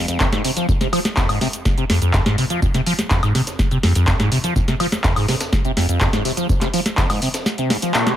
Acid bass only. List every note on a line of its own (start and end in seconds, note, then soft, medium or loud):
0.08 0.18 F2 medium
0.20 0.27 F2 loud
0.32 0.42 G#2 medium
0.45 0.51 C3 medium
0.57 0.67 F3 medium
0.69 0.73 F2 loud
0.81 0.87 C3 medium
0.93 0.99 F3 loud
1.17 1.27 F2 medium
1.29 1.39 G#2 medium
1.41 1.48 C3 medium
1.78 1.84 C3 medium
1.90 2.00 F2 medium
2.02 2.12 F2 medium
2.14 2.21 F2 loud
2.26 2.36 G#2 medium
2.38 2.45 C3 medium
2.50 2.60 F3 medium
2.62 2.66 F2 loud
2.74 2.81 C3 medium
2.86 2.93 F3 loud
3.11 3.21 F2 medium
3.23 3.33 G#2 medium
3.35 3.42 C3 medium
3.71 3.78 C3 medium
3.83 3.93 F2 medium
3.96 4.05 F2 medium
4.20 4.30 G#2 medium
4.32 4.38 C3 medium
4.44 4.54 F3 medium
4.56 4.60 F2 loud
4.68 4.75 C3 medium
4.80 4.87 F3 loud
5.04 5.14 F2 medium
5.17 5.26 G#2 medium
5.29 5.35 C3 medium
5.65 5.71 C3 medium
5.77 5.87 F2 medium
5.89 5.99 F2 medium
6.13 6.23 G#2 medium
6.25 6.32 C3 medium
6.37 6.47 F3 medium
6.49 6.53 F2 loud
6.62 6.68 C3 medium
6.74 6.80 F3 loud
6.98 7.08 F2 medium
7.10 7.20 G#2 medium
7.22 7.29 C3 medium
7.58 7.72 C3 medium
7.70 7.77 G#2 medium
7.83 7.93 F3 medium
7.95 8.08 A#2 medium
8.07 8.13 C3 loud